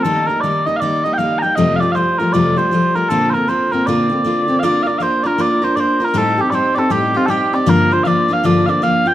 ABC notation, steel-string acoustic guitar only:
X:1
M:4/4
L:1/8
Q:"Swing" 1/4=157
K:Bb
V:1 name="Steel-string acoustic guitar"
[E,G,B,E] [G,B,E] [E,G,B,E] [G,B,E] [E,G,B,E] [G,B,E] [E,G,B,E] [G,B,E] | [F,,C,F,G,A,F] [F,G,A,F] [F,G,A,F] [F,G,A,F] [F,,C,F,G,A,F] [F,G,A,F] [F,G,A,F] [F,G,A,F] | [B,,D,B,CF] [B,CF] [D,B,CF] [B,CF] [B,,D,B,CF] [B,CF] [D,B,CF] [B,CF] | [B,DFB] [DFB] [B,DFB] [DFB] [B,DFB] [DFB] [B,DFB] [DFB] |
[A,,G,CEG] [CEG] [G,CEG] [CEG] [A,,G,CEG] [CEG] [G,CEG] [CEG] | [G,,D,F,B,DF] [F,B,DF] [F,B,DF] [F,B,DF] [G,,D,F,B,DF] [F,B,DF] [F,B,DF] [F,B,DF] |]